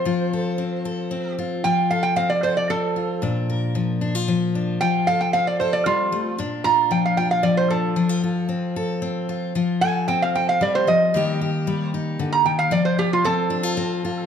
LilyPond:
<<
  \new Staff \with { instrumentName = "Resonator guitar played with a steel bar" } { \time 3/4 \key f \mixolydian \tempo 4 = 114 c''2~ c''8 r8 | g''8 f''16 g''16 f''16 d''16 c''16 d''16 a'4 | r2. | g''8 f''16 g''16 f''16 d''16 c''16 d''16 f'4 |
r8 bes''8 g''16 f''16 g''16 f''16 d''16 c''16 a'8~ | a'4. r4. | r8 aes''8 g''16 f''16 g''16 f''16 d''16 c''16 ees''8~ | ees''4. r8. bes''16 g''16 f''16 |
d''16 c''16 g'16 f'16 a'2 | }
  \new Staff \with { instrumentName = "Steel-string acoustic guitar" } { \time 3/4 \key f \mixolydian << { f'8 a'4 a'4 f'8 | f'8 a'4 a'4 f'8 | d'8 bes'4 d'16 f'8. d'8 | f'8 a'4 a'4. |
d'8 f'4 f'4 d'8 | d'16 f'16 f'4 a'4 f'8 | f'8 a'4 a'4. | <g bes ees' g'>8 g'4 ees'4. |
f'8 f'4 d'16 f'8. f'8 | } \\ { f4 c'4 c'4 | f4 c'4 c'4 | bes,4 f4 f4 | f4 c'4 g8 a8 |
bes,4 f4 f4 | f4 c'4 c'4 | f4 c'4 g8 f8 | ees4 g4 d8 ees8 |
f4 c'4 c'4 | } >> }
>>